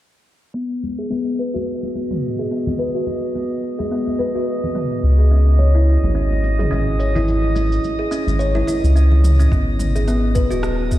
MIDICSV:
0, 0, Header, 1, 5, 480
1, 0, Start_track
1, 0, Tempo, 560748
1, 469, Time_signature, 4, 2, 24, 8
1, 9404, End_track
2, 0, Start_track
2, 0, Title_t, "Synth texture"
2, 0, Program_c, 0, 99
2, 470, Note_on_c, 0, 75, 80
2, 8146, Note_off_c, 0, 75, 0
2, 8156, Note_on_c, 0, 75, 86
2, 9404, Note_off_c, 0, 75, 0
2, 9404, End_track
3, 0, Start_track
3, 0, Title_t, "Kalimba"
3, 0, Program_c, 1, 108
3, 462, Note_on_c, 1, 59, 72
3, 594, Note_off_c, 1, 59, 0
3, 843, Note_on_c, 1, 68, 68
3, 943, Note_off_c, 1, 68, 0
3, 945, Note_on_c, 1, 59, 90
3, 1177, Note_off_c, 1, 59, 0
3, 1190, Note_on_c, 1, 71, 67
3, 1311, Note_off_c, 1, 71, 0
3, 1319, Note_on_c, 1, 66, 88
3, 1381, Note_off_c, 1, 66, 0
3, 1672, Note_on_c, 1, 59, 64
3, 1799, Note_off_c, 1, 59, 0
3, 2046, Note_on_c, 1, 68, 68
3, 2144, Note_off_c, 1, 68, 0
3, 2150, Note_on_c, 1, 59, 77
3, 2379, Note_off_c, 1, 59, 0
3, 2385, Note_on_c, 1, 71, 71
3, 2509, Note_off_c, 1, 71, 0
3, 2525, Note_on_c, 1, 66, 92
3, 2584, Note_off_c, 1, 66, 0
3, 2869, Note_on_c, 1, 59, 72
3, 2998, Note_off_c, 1, 59, 0
3, 3243, Note_on_c, 1, 68, 69
3, 3343, Note_off_c, 1, 68, 0
3, 3351, Note_on_c, 1, 59, 86
3, 3580, Note_off_c, 1, 59, 0
3, 3585, Note_on_c, 1, 71, 68
3, 3709, Note_off_c, 1, 71, 0
3, 3726, Note_on_c, 1, 66, 88
3, 3785, Note_off_c, 1, 66, 0
3, 4065, Note_on_c, 1, 59, 60
3, 4196, Note_off_c, 1, 59, 0
3, 4440, Note_on_c, 1, 68, 68
3, 4542, Note_off_c, 1, 68, 0
3, 4547, Note_on_c, 1, 61, 80
3, 4778, Note_off_c, 1, 61, 0
3, 4784, Note_on_c, 1, 73, 79
3, 4909, Note_off_c, 1, 73, 0
3, 4920, Note_on_c, 1, 64, 89
3, 4982, Note_off_c, 1, 64, 0
3, 5263, Note_on_c, 1, 61, 73
3, 5395, Note_off_c, 1, 61, 0
3, 5639, Note_on_c, 1, 68, 68
3, 5741, Note_off_c, 1, 68, 0
3, 5742, Note_on_c, 1, 61, 91
3, 5975, Note_off_c, 1, 61, 0
3, 5988, Note_on_c, 1, 73, 64
3, 6110, Note_off_c, 1, 73, 0
3, 6124, Note_on_c, 1, 64, 97
3, 6184, Note_off_c, 1, 64, 0
3, 6466, Note_on_c, 1, 61, 64
3, 6596, Note_off_c, 1, 61, 0
3, 6839, Note_on_c, 1, 68, 69
3, 6941, Note_off_c, 1, 68, 0
3, 6944, Note_on_c, 1, 61, 97
3, 7176, Note_off_c, 1, 61, 0
3, 7184, Note_on_c, 1, 73, 78
3, 7308, Note_off_c, 1, 73, 0
3, 7320, Note_on_c, 1, 64, 89
3, 7382, Note_off_c, 1, 64, 0
3, 7425, Note_on_c, 1, 64, 89
3, 7504, Note_off_c, 1, 64, 0
3, 7666, Note_on_c, 1, 61, 83
3, 7796, Note_off_c, 1, 61, 0
3, 8042, Note_on_c, 1, 61, 90
3, 8137, Note_off_c, 1, 61, 0
3, 8147, Note_on_c, 1, 59, 71
3, 8277, Note_off_c, 1, 59, 0
3, 8522, Note_on_c, 1, 68, 68
3, 8623, Note_off_c, 1, 68, 0
3, 8625, Note_on_c, 1, 59, 97
3, 8857, Note_off_c, 1, 59, 0
3, 8858, Note_on_c, 1, 71, 68
3, 8986, Note_off_c, 1, 71, 0
3, 8992, Note_on_c, 1, 66, 97
3, 9058, Note_off_c, 1, 66, 0
3, 9337, Note_on_c, 1, 59, 68
3, 9404, Note_off_c, 1, 59, 0
3, 9404, End_track
4, 0, Start_track
4, 0, Title_t, "Analog synth bass"
4, 0, Program_c, 2, 38
4, 4309, Note_on_c, 2, 37, 89
4, 5113, Note_off_c, 2, 37, 0
4, 5161, Note_on_c, 2, 32, 97
4, 5707, Note_off_c, 2, 32, 0
4, 5747, Note_on_c, 2, 32, 75
4, 6668, Note_off_c, 2, 32, 0
4, 7079, Note_on_c, 2, 32, 95
4, 7386, Note_off_c, 2, 32, 0
4, 7563, Note_on_c, 2, 37, 93
4, 8108, Note_off_c, 2, 37, 0
4, 8144, Note_on_c, 2, 32, 90
4, 8951, Note_off_c, 2, 32, 0
4, 9002, Note_on_c, 2, 27, 106
4, 9404, Note_off_c, 2, 27, 0
4, 9404, End_track
5, 0, Start_track
5, 0, Title_t, "Drums"
5, 476, Note_on_c, 9, 69, 28
5, 562, Note_off_c, 9, 69, 0
5, 713, Note_on_c, 9, 69, 66
5, 715, Note_on_c, 9, 63, 52
5, 798, Note_off_c, 9, 69, 0
5, 801, Note_off_c, 9, 63, 0
5, 958, Note_on_c, 9, 62, 46
5, 1044, Note_off_c, 9, 62, 0
5, 1195, Note_on_c, 9, 69, 67
5, 1280, Note_off_c, 9, 69, 0
5, 1333, Note_on_c, 9, 63, 64
5, 1419, Note_off_c, 9, 63, 0
5, 1567, Note_on_c, 9, 62, 48
5, 1653, Note_off_c, 9, 62, 0
5, 1673, Note_on_c, 9, 62, 51
5, 1674, Note_on_c, 9, 69, 67
5, 1758, Note_off_c, 9, 62, 0
5, 1759, Note_off_c, 9, 69, 0
5, 1804, Note_on_c, 9, 45, 70
5, 1805, Note_on_c, 9, 63, 57
5, 1890, Note_off_c, 9, 45, 0
5, 1891, Note_off_c, 9, 63, 0
5, 1915, Note_on_c, 9, 69, 28
5, 2000, Note_off_c, 9, 69, 0
5, 2151, Note_on_c, 9, 69, 69
5, 2237, Note_off_c, 9, 69, 0
5, 2287, Note_on_c, 9, 63, 61
5, 2287, Note_on_c, 9, 64, 83
5, 2290, Note_on_c, 9, 69, 41
5, 2372, Note_off_c, 9, 63, 0
5, 2372, Note_off_c, 9, 64, 0
5, 2376, Note_off_c, 9, 69, 0
5, 2394, Note_on_c, 9, 69, 31
5, 2480, Note_off_c, 9, 69, 0
5, 2531, Note_on_c, 9, 62, 36
5, 2617, Note_off_c, 9, 62, 0
5, 2627, Note_on_c, 9, 63, 58
5, 2629, Note_on_c, 9, 62, 31
5, 2630, Note_on_c, 9, 69, 72
5, 2712, Note_off_c, 9, 63, 0
5, 2715, Note_off_c, 9, 62, 0
5, 2716, Note_off_c, 9, 69, 0
5, 2767, Note_on_c, 9, 69, 41
5, 2853, Note_off_c, 9, 69, 0
5, 2871, Note_on_c, 9, 69, 30
5, 2875, Note_on_c, 9, 62, 49
5, 2957, Note_off_c, 9, 69, 0
5, 2960, Note_off_c, 9, 62, 0
5, 3112, Note_on_c, 9, 69, 72
5, 3198, Note_off_c, 9, 69, 0
5, 3248, Note_on_c, 9, 69, 40
5, 3253, Note_on_c, 9, 63, 78
5, 3333, Note_off_c, 9, 69, 0
5, 3338, Note_off_c, 9, 63, 0
5, 3352, Note_on_c, 9, 69, 31
5, 3437, Note_off_c, 9, 69, 0
5, 3487, Note_on_c, 9, 63, 59
5, 3573, Note_off_c, 9, 63, 0
5, 3593, Note_on_c, 9, 63, 55
5, 3594, Note_on_c, 9, 69, 67
5, 3679, Note_off_c, 9, 63, 0
5, 3680, Note_off_c, 9, 69, 0
5, 3729, Note_on_c, 9, 69, 41
5, 3730, Note_on_c, 9, 62, 50
5, 3815, Note_off_c, 9, 69, 0
5, 3816, Note_off_c, 9, 62, 0
5, 3833, Note_on_c, 9, 69, 31
5, 3918, Note_off_c, 9, 69, 0
5, 3970, Note_on_c, 9, 64, 68
5, 4056, Note_off_c, 9, 64, 0
5, 4067, Note_on_c, 9, 45, 68
5, 4071, Note_on_c, 9, 69, 76
5, 4153, Note_off_c, 9, 45, 0
5, 4157, Note_off_c, 9, 69, 0
5, 4209, Note_on_c, 9, 69, 42
5, 4295, Note_off_c, 9, 69, 0
5, 4314, Note_on_c, 9, 69, 31
5, 4399, Note_off_c, 9, 69, 0
5, 4548, Note_on_c, 9, 63, 57
5, 4549, Note_on_c, 9, 69, 78
5, 4634, Note_off_c, 9, 63, 0
5, 4635, Note_off_c, 9, 69, 0
5, 4686, Note_on_c, 9, 69, 40
5, 4772, Note_off_c, 9, 69, 0
5, 4789, Note_on_c, 9, 62, 51
5, 4793, Note_on_c, 9, 69, 32
5, 4874, Note_off_c, 9, 62, 0
5, 4878, Note_off_c, 9, 69, 0
5, 5031, Note_on_c, 9, 69, 70
5, 5117, Note_off_c, 9, 69, 0
5, 5168, Note_on_c, 9, 69, 41
5, 5169, Note_on_c, 9, 63, 71
5, 5253, Note_off_c, 9, 69, 0
5, 5254, Note_off_c, 9, 63, 0
5, 5273, Note_on_c, 9, 69, 31
5, 5358, Note_off_c, 9, 69, 0
5, 5416, Note_on_c, 9, 62, 43
5, 5501, Note_off_c, 9, 62, 0
5, 5511, Note_on_c, 9, 62, 50
5, 5512, Note_on_c, 9, 69, 66
5, 5596, Note_off_c, 9, 62, 0
5, 5597, Note_off_c, 9, 69, 0
5, 5642, Note_on_c, 9, 63, 58
5, 5646, Note_on_c, 9, 45, 71
5, 5650, Note_on_c, 9, 69, 43
5, 5728, Note_off_c, 9, 63, 0
5, 5731, Note_off_c, 9, 45, 0
5, 5736, Note_off_c, 9, 69, 0
5, 5754, Note_on_c, 9, 69, 31
5, 5839, Note_off_c, 9, 69, 0
5, 5992, Note_on_c, 9, 69, 80
5, 6077, Note_off_c, 9, 69, 0
5, 6128, Note_on_c, 9, 64, 85
5, 6128, Note_on_c, 9, 69, 44
5, 6129, Note_on_c, 9, 63, 57
5, 6213, Note_off_c, 9, 69, 0
5, 6214, Note_off_c, 9, 63, 0
5, 6214, Note_off_c, 9, 64, 0
5, 6234, Note_on_c, 9, 69, 31
5, 6235, Note_on_c, 9, 64, 79
5, 6320, Note_off_c, 9, 69, 0
5, 6321, Note_off_c, 9, 64, 0
5, 6367, Note_on_c, 9, 62, 28
5, 6453, Note_off_c, 9, 62, 0
5, 6472, Note_on_c, 9, 69, 78
5, 6473, Note_on_c, 9, 63, 61
5, 6474, Note_on_c, 9, 62, 30
5, 6558, Note_off_c, 9, 63, 0
5, 6558, Note_off_c, 9, 69, 0
5, 6559, Note_off_c, 9, 62, 0
5, 6610, Note_on_c, 9, 69, 44
5, 6695, Note_off_c, 9, 69, 0
5, 6711, Note_on_c, 9, 69, 32
5, 6720, Note_on_c, 9, 62, 44
5, 6797, Note_off_c, 9, 69, 0
5, 6805, Note_off_c, 9, 62, 0
5, 6952, Note_on_c, 9, 69, 73
5, 7037, Note_off_c, 9, 69, 0
5, 7084, Note_on_c, 9, 63, 65
5, 7089, Note_on_c, 9, 69, 43
5, 7170, Note_off_c, 9, 63, 0
5, 7175, Note_off_c, 9, 69, 0
5, 7193, Note_on_c, 9, 69, 31
5, 7279, Note_off_c, 9, 69, 0
5, 7331, Note_on_c, 9, 63, 65
5, 7417, Note_off_c, 9, 63, 0
5, 7432, Note_on_c, 9, 69, 76
5, 7442, Note_on_c, 9, 63, 58
5, 7518, Note_off_c, 9, 69, 0
5, 7527, Note_off_c, 9, 63, 0
5, 7569, Note_on_c, 9, 62, 46
5, 7571, Note_on_c, 9, 69, 42
5, 7654, Note_off_c, 9, 62, 0
5, 7657, Note_off_c, 9, 69, 0
5, 7675, Note_on_c, 9, 69, 32
5, 7760, Note_off_c, 9, 69, 0
5, 7804, Note_on_c, 9, 64, 77
5, 7889, Note_off_c, 9, 64, 0
5, 7910, Note_on_c, 9, 45, 73
5, 7914, Note_on_c, 9, 69, 77
5, 7995, Note_off_c, 9, 45, 0
5, 8000, Note_off_c, 9, 69, 0
5, 8047, Note_on_c, 9, 69, 44
5, 8133, Note_off_c, 9, 69, 0
5, 8147, Note_on_c, 9, 36, 114
5, 8153, Note_on_c, 9, 69, 30
5, 8232, Note_off_c, 9, 36, 0
5, 8238, Note_off_c, 9, 69, 0
5, 8383, Note_on_c, 9, 45, 59
5, 8388, Note_on_c, 9, 69, 70
5, 8469, Note_off_c, 9, 45, 0
5, 8473, Note_off_c, 9, 69, 0
5, 8524, Note_on_c, 9, 69, 42
5, 8609, Note_off_c, 9, 69, 0
5, 8628, Note_on_c, 9, 69, 29
5, 8714, Note_off_c, 9, 69, 0
5, 8865, Note_on_c, 9, 36, 101
5, 8865, Note_on_c, 9, 69, 73
5, 8950, Note_off_c, 9, 69, 0
5, 8951, Note_off_c, 9, 36, 0
5, 8999, Note_on_c, 9, 69, 40
5, 9085, Note_off_c, 9, 69, 0
5, 9099, Note_on_c, 9, 37, 73
5, 9104, Note_on_c, 9, 69, 32
5, 9185, Note_off_c, 9, 37, 0
5, 9189, Note_off_c, 9, 69, 0
5, 9344, Note_on_c, 9, 69, 71
5, 9345, Note_on_c, 9, 36, 57
5, 9404, Note_off_c, 9, 36, 0
5, 9404, Note_off_c, 9, 69, 0
5, 9404, End_track
0, 0, End_of_file